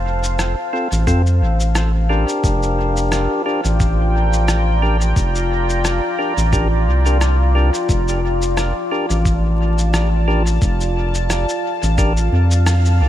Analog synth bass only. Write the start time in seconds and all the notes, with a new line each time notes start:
Already playing: F1
0.92 A1
1.07 F2
1.42 A1
2.44 F1
3.65 A1
5.16 F1
6.37 A1
6.87 C2
7.89 F1
9.10 A1
10.62 F1
11.83 A1
12.32 F2
13.00 C2